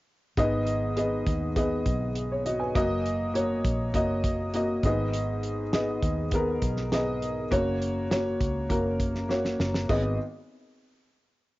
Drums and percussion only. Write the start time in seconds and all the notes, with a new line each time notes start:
0.37 kick, closed hi-hat
0.67 closed hi-hat
0.97 closed hi-hat
1.27 kick, closed hi-hat
1.56 kick, closed hi-hat
1.86 kick, closed hi-hat
2.15 closed hi-hat
2.46 closed hi-hat
2.75 kick, closed hi-hat
3.06 closed hi-hat
3.35 closed hi-hat
3.64 kick, closed hi-hat
3.94 kick, closed hi-hat
4.24 kick, closed hi-hat
4.54 closed hi-hat
4.83 kick, closed hi-hat
5.13 closed hi-hat
5.43 closed hi-hat
5.73 snare, closed hi-hat
6.03 kick, closed hi-hat
6.31 kick, closed hi-hat
6.62 kick, closed hi-hat
6.77 snare
6.92 snare, closed hi-hat
7.22 closed hi-hat
7.52 kick, closed hi-hat
7.82 closed hi-hat
8.11 snare, closed hi-hat
8.41 kick, closed hi-hat
8.70 kick, closed hi-hat
9.00 kick, closed hi-hat
9.15 snare
9.30 snare
9.45 snare
9.60 snare
9.74 snare
9.89 kick, crash